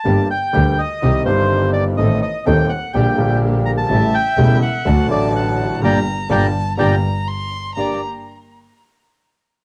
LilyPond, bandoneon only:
\new Staff \with { instrumentName = "Bandoneon" } { \time 4/4 \key g \minor \tempo 4 = 124 a''8 g''4 ees''4 c''4 d''8 | ees''8 ees''8 g''8 fis''8 g''4 r8 bes''16 a''16~ | a''8 g''4 fis''4 d''8 fis''4 | <d'' g'' bes''>8 r8 <d'' g'' bes''>8 r8 <d'' g'' bes''>8 r4. |
d''8 r2. r8 | }